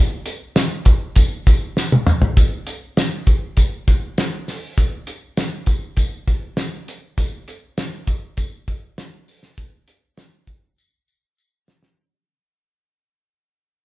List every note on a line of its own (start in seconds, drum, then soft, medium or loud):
0.26 closed hi-hat medium
0.26 tambourine medium
0.56 snare loud
0.56 closed hi-hat loud
0.56 tambourine loud
0.85 kick loud
0.85 closed hi-hat medium
0.85 tambourine medium
1.16 kick medium
1.16 closed hi-hat medium
1.16 tambourine loud
1.47 kick loud
1.47 closed hi-hat medium
1.47 tambourine medium
1.77 snare medium
1.77 tambourine medium
1.92 high tom medium
2.07 mid tom medium
2.07 tambourine medium
2.22 floor tom medium
2.37 kick loud
2.37 closed hi-hat medium
2.37 tambourine medium
2.67 closed hi-hat medium
2.67 tambourine medium
2.97 snare loud
2.97 closed hi-hat medium
2.97 tambourine loud
3.27 kick loud
3.27 closed hi-hat medium
3.27 tambourine medium
3.57 kick medium
3.57 closed hi-hat medium
3.57 tambourine loud
3.88 kick loud
3.88 closed hi-hat medium
3.88 tambourine medium
4.18 snare loud
4.18 closed hi-hat medium
4.18 tambourine medium
4.48 snare soft
4.48 open hi-hat medium
4.48 tambourine medium
4.78 kick loud
4.78 closed hi-hat medium
4.78 tambourine medium
5.07 closed hi-hat medium
5.07 tambourine medium
5.37 snare loud
5.37 closed hi-hat loud
5.37 tambourine loud
5.66 kick medium
5.66 closed hi-hat medium
5.66 tambourine medium
5.97 kick medium
5.97 closed hi-hat medium
5.97 tambourine medium
6.28 kick loud
6.28 closed hi-hat medium
6.28 tambourine medium
6.57 snare loud
6.57 closed hi-hat medium
6.57 tambourine loud
6.88 closed hi-hat medium
6.88 tambourine medium
7.18 kick loud
7.18 closed hi-hat medium
7.18 tambourine medium
7.48 closed hi-hat medium
7.48 tambourine medium
7.78 snare loud
7.78 closed hi-hat medium
7.78 tambourine loud
8.07 kick medium
8.07 closed hi-hat medium
8.07 tambourine medium
8.37 kick medium
8.37 closed hi-hat medium
8.37 tambourine medium
8.68 kick loud
8.68 closed hi-hat medium
8.68 tambourine medium
8.98 snare loud
8.98 closed hi-hat medium
8.98 tambourine medium
9.28 open hi-hat medium
9.28 tambourine soft
9.43 snare soft
9.58 kick loud
9.58 closed hi-hat medium
9.58 tambourine medium
9.88 closed hi-hat medium
9.88 tambourine medium
10.17 snare loud
10.17 closed hi-hat medium
10.17 tambourine loud
10.47 kick medium
10.47 closed hi-hat medium
10.47 tambourine medium
10.78 tambourine medium
11.08 tambourine medium
11.38 tambourine medium
11.68 snare loud
11.68 tambourine medium
11.83 snare medium